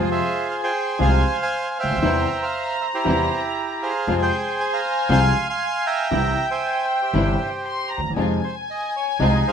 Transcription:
0.00 0.19 F2 medium
0.00 0.19 C3 medium
0.00 0.19 F3 medium
0.00 0.19 G#3 medium
0.00 0.19 C4 medium
0.00 0.19 F4 medium
0.00 0.71 F4 medium
0.00 1.99 G#5 medium
0.11 1.10 G#4 medium
0.11 0.62 C5 medium
0.11 0.47 E5 medium
0.51 0.56 F5 medium
0.63 1.00 C5 medium
0.63 0.99 G5 medium
0.99 1.21 C2 medium
0.99 1.22 C2 medium
0.99 1.21 C3 medium
0.99 1.21 F3 medium
0.99 1.21 G#3 medium
0.99 1.22 G#3 medium
0.99 1.22 C4 medium
0.99 1.21 F4 medium
0.99 1.22 F4 medium
0.99 1.78 C5 medium
0.99 1.99 F5 medium
0.99 1.37 G#5 medium
1.42 1.70 G#5 medium
1.71 1.78 G#5 medium
1.79 2.41 C5 medium
1.79 2.77 E5 medium
1.79 2.45 G5 medium
1.83 1.90 C#2 soft
1.90 1.96 D2 medium
1.95 2.02 D#2 medium
2.02 2.24 E2 medium
2.02 2.24 C3 medium
2.02 2.24 E3 medium
2.02 2.24 G3 medium
2.02 2.25 G3 medium
2.02 2.25 C4 medium
2.02 2.24 E4 medium
2.02 2.25 E4 medium
2.02 4.07 A#5 medium
2.42 2.93 C5 medium
2.42 2.82 F5 medium
2.81 2.86 E5 medium
2.94 3.91 E4 medium
2.94 3.91 G4 medium
2.94 3.41 C5 medium
3.05 3.27 E2 medium
3.05 3.26 C3 medium
3.05 3.27 E3 medium
3.05 3.27 G3 medium
3.05 3.27 C4 medium
3.05 3.27 E4 medium
3.82 4.80 G#4 medium
3.82 4.21 C5 medium
3.82 4.18 F5 medium
4.06 4.29 F2 medium
4.06 4.29 C3 medium
4.06 4.29 F3 medium
4.06 4.29 G#3 medium
4.06 4.29 C4 medium
4.06 4.29 F4 medium
4.06 6.11 G#5 medium
4.22 5.19 C5 medium
4.22 4.60 G5 medium
4.60 4.66 G#5 medium
4.73 5.10 F5 medium
4.73 5.08 A#5 medium
5.09 5.31 C2 loud
5.09 5.31 C2 medium
5.09 5.31 C3 medium
5.09 5.31 F3 medium
5.09 5.31 G#3 medium
5.09 5.31 C4 medium
5.09 5.31 F4 medium
5.09 5.48 F5 medium
5.09 5.48 G#5 medium
5.09 5.46 C6 loud
5.49 6.08 F5 medium
5.49 6.08 G#5 medium
5.49 5.84 C6 medium
5.86 6.49 E5 medium
5.86 6.84 G5 medium
5.86 6.46 A#5 medium
6.10 6.33 C2 medium
6.10 6.33 C3 medium
6.10 6.33 E3 medium
6.10 6.33 G3 medium
6.10 6.33 C4 medium
6.10 6.33 E4 medium
6.10 7.65 G5 medium
6.51 7.01 C5 medium
6.51 7.01 E5 medium
6.51 6.86 G#5 medium
6.91 6.96 G5 medium
7.02 8.01 G4 soft
7.02 8.01 C5 soft
7.02 7.50 E5 medium
7.13 7.35 G1 medium
7.13 7.35 G2 medium
7.13 7.35 C3 medium
7.13 7.35 E3 medium
7.13 7.35 G3 medium
7.13 7.35 C4 medium
7.13 7.35 E4 medium
7.13 7.36 E4 medium
7.64 7.91 C6 medium
7.89 8.16 A#5 medium
7.98 8.03 D2 soft
7.98 8.04 D2 soft
8.04 8.10 D#2 medium
8.04 8.09 D#2 medium
8.10 8.16 E2 medium
8.10 8.17 E2 medium
8.16 8.38 F2 medium
8.16 8.38 C3 medium
8.16 8.38 F3 medium
8.16 8.38 G#3 medium
8.16 8.38 D#4 medium
8.16 8.39 F4 medium
8.16 9.52 G#5 medium
8.44 8.55 C5 medium
8.70 8.96 D#5 medium
8.96 9.19 C#5 medium
9.19 9.41 C2 medium
9.19 9.41 C3 medium
9.19 9.41 F3 medium
9.19 9.41 G#3 medium
9.19 9.42 G#3 medium
9.19 9.42 D#4 medium
9.19 9.52 D#4 medium
9.19 9.42 F4 medium
9.19 9.46 G#4 medium
9.19 9.28 C5 medium
9.35 9.40 D#5 medium
9.48 9.52 G#4 medium
9.48 9.52 C5 medium
9.48 9.52 F5 loud

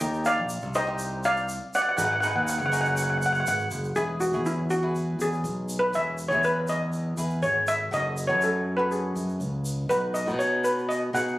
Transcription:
0.00 0.36 D#2 loud
0.00 0.45 D#4 medium
0.00 0.46 G4 medium
0.00 0.46 A#4 medium
0.00 0.23 D#5 medium
0.00 0.28 G5 loud
0.00 shaker loud
0.14 shaker soft
0.25 0.73 D5 medium
0.25 0.77 F5 loud
0.25 shaker medium
0.38 0.61 A#1 medium
0.49 shaker loud
0.61 1.58 C2 medium
0.61 shaker soft
0.74 0.83 D#4 medium
0.74 0.83 G4 medium
0.74 0.84 A#4 medium
0.74 1.22 C5 medium
0.74 1.26 D#5 loud
0.74 shaker medium
0.87 1.47 D#4 medium
0.87 1.47 G4 medium
0.87 1.47 C5 medium
0.99 shaker medium
1.24 1.71 D5 medium
1.24 1.76 F5 medium
1.24 shaker medium
1.37 shaker soft
1.49 shaker medium
1.74 1.82 D5 medium
1.74 1.81 F#5 medium
1.74 shaker medium
1.82 1.88 F#5 medium
1.89 1.96 F#5 medium
1.97 2.33 G#1 loud
1.97 2.13 D#4 medium
1.97 2.13 G#4 medium
1.97 2.14 B4 medium
1.97 2.03 F#5 medium
1.97 shaker loud
2.04 2.11 F#5 medium
2.12 2.19 F#5 medium
2.20 2.53 D#4 medium
2.20 2.53 G#4 medium
2.20 2.53 B4 medium
2.20 2.26 F#5 medium
2.20 shaker medium
2.27 2.34 F#5 medium
2.35 2.59 D#2 medium
2.35 2.42 F#5 medium
2.43 2.49 F#5 soft
2.48 2.57 F#5 medium
2.48 shaker loud
2.58 3.43 F#1 loud
2.58 2.65 F#5 medium
2.58 shaker soft
2.66 2.72 F#5 medium
2.72 3.32 D#4 medium
2.72 3.32 G#4 medium
2.72 3.32 C#5 medium
2.72 2.80 F#5 medium
2.72 shaker medium
2.81 2.87 F#5 medium
2.85 2.94 F#5 medium
2.85 shaker soft
2.95 3.01 F#5 medium
2.95 shaker medium
3.03 3.09 F#5 soft
3.10 3.17 F#5 medium
3.18 3.25 F#5 soft
3.22 3.31 F#5 medium
3.22 shaker medium
3.33 3.39 F#5 medium
3.33 shaker soft
3.40 3.47 F#5 medium
3.47 3.69 G#1 loud
3.47 3.55 F#5 medium
3.47 shaker medium
3.71 3.94 F#1 medium
3.71 shaker medium
3.84 shaker soft
3.96 4.34 E1 medium
3.96 4.19 E4 medium
3.96 4.22 G#4 medium
3.96 4.19 G#4 medium
3.96 4.20 B4 medium
3.96 shaker medium
4.20 4.44 F#4 medium
4.20 shaker medium
4.32 5.16 E2 medium
4.32 4.63 E4 medium
4.32 4.64 G#4 medium
4.32 4.64 C#5 medium
4.46 4.72 E4 medium
4.46 shaker medium
4.70 5.22 F#4 medium
4.70 shaker medium
4.83 5.42 E4 medium
4.83 5.43 G#4 medium
4.83 5.43 B4 medium
4.95 shaker medium
5.19 5.43 E2 medium
5.19 5.80 G#4 medium
5.19 shaker medium
5.33 shaker soft
5.44 5.91 B1 medium
5.44 shaker medium
5.69 shaker loud
5.79 5.94 B4 medium
5.93 6.32 E1 medium
5.93 6.16 E4 medium
5.93 6.17 G#4 medium
5.93 6.17 C#5 medium
5.93 6.29 E5 loud
5.93 shaker medium
6.18 shaker medium
6.28 7.14 E2 medium
6.28 6.83 E4 medium
6.28 6.84 G#4 medium
6.28 6.36 C#5 medium
6.28 shaker soft
6.33 6.84 E5 medium
6.44 6.70 B4 medium
6.44 shaker medium
6.68 7.15 D#5 medium
6.68 shaker medium
6.93 shaker medium
7.17 7.41 E2 medium
7.17 7.63 E4 medium
7.17 7.63 G#4 medium
7.17 7.63 B4 medium
7.17 shaker medium
7.30 shaker soft
7.42 7.89 G#1 medium
7.42 7.68 C#5 medium
7.42 shaker medium
7.67 7.94 E5 medium
7.67 shaker medium
7.91 8.31 F#1 medium
7.91 8.14 F#4 medium
7.91 8.15 A4 medium
7.91 8.15 C#5 medium
7.91 8.27 D#5 loud
7.91 shaker medium
8.17 shaker medium
8.27 9.12 F#2 medium
8.27 8.59 F#4 medium
8.27 8.59 A4 medium
8.27 8.60 B4 medium
8.27 8.42 C#5 medium
8.27 shaker soft
8.41 8.74 A4 medium
8.41 shaker medium
8.77 9.38 F#4 medium
8.77 9.38 A4 medium
8.77 8.84 B4 medium
8.77 9.39 C#5 medium
8.91 9.15 G#4 medium
8.91 shaker medium
9.15 9.39 F#2 medium
9.15 shaker medium
9.29 shaker soft
9.40 9.87 C#2 medium
9.40 shaker medium
9.65 shaker medium
9.89 10.28 B1 medium
9.89 10.12 D#4 medium
9.89 10.13 F#4 medium
9.89 10.16 B4 medium
9.89 10.13 B4 medium
9.89 shaker medium
10.14 10.40 D#5 medium
10.14 shaker medium
10.26 11.10 B2 medium
10.26 10.79 D#4 medium
10.26 10.79 F#4 medium
10.26 10.80 B4 medium
10.26 shaker soft
10.39 10.65 C#5 medium
10.39 shaker medium
10.64 10.90 B4 medium
10.64 shaker medium
10.78 shaker soft
10.89 11.15 D#5 medium
10.89 shaker medium
11.13 11.37 B2 medium
11.13 11.39 D#4 medium
11.13 11.39 F#4 medium
11.13 11.39 G#4 medium
11.13 11.39 F#5 medium
11.13 shaker medium

